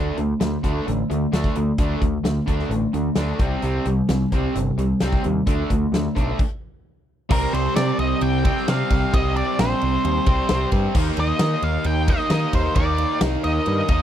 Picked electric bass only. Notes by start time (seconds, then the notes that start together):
0.18 D2
0.42 D2
0.64 D2
0.88 A1
1.11 D2
1.33 D2
1.56 D2
1.79 D2
2.02 D2
2.24 D2
2.48 D2
2.69 A1
2.94 D2
3.17 D2
3.39 C2
3.63 C2
3.86 C2
4.09 C2
4.32 C2
4.55 G1
4.78 C2
5.02 C2
5.25 D#2
5.48 D2
5.71 D2
5.92 D2
6.17 B1
7.31 C2
7.53 C2
7.77 C3
7.99 C2
8.22 C2
8.68 C3
8.91 C2
9.13 C2
9.59 A#1
9.83 C2
10.05 D#2
10.27 C2
10.51 C2
10.73 G2
10.95 D#2
11.17 D#2
11.40 D#3
11.62 D#2
11.85 D#2
12.31 D#3
12.54 D#2
12.76 D#2
13.22 C2
13.45 D#2
13.67 G2
13.89 D#2